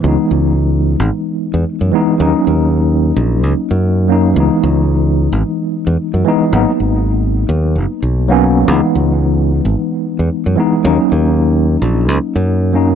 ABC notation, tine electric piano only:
X:1
M:4/4
L:1/16
Q:"Swing 16ths" 1/4=111
K:C#dor
V:1 name="Tine electric piano"
[E,G,B,D]12- [E,G,B,D]2 [E,G,B,D]2 | [F,A,CD] z12 z [F,A,CD]2 | [E,G,B,D]12- [E,G,B,D]2 [E,G,B,D]2 | [F,A,B,D] z12 [F,A,B,C]3 |
[E,G,B,D]12- [E,G,B,D]2 [E,G,B,D]2 | [F,A,CD] z12 z [F,A,CD]2 |]